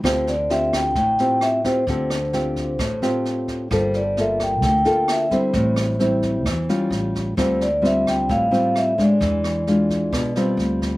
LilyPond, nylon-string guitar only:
\new Staff \with { instrumentName = "Nylon-string guitar" } { \time 4/4 \key d \minor \tempo 4 = 131 << { <c' f' g'>8 r8 <c' f' g'>4 r8 <c' f' g'>4 <c' f' g'>8 | <c' f' g'>8 r8 <c' f' g'>4 r8 <c' f' g'>4. | <bes f' a'>8 r8 <bes f' a'>4. <bes f' a'>4 <g c' e'>8~ | <g c' e'>4 <g c' e'>4 r8 <g cis' f'>4. |
<g c' f'>8 r8 <g c' f'>4. <g c' f'>4 <gis d'>8~ | <gis d'>4 <gis d' f'>4. <g c' f'>4. | } \\ { d2 a,2 | d2 a,2 | g2 d2 | a,2 e4 r4 |
d2 a,2 | e2 b,4 r4 | } >> }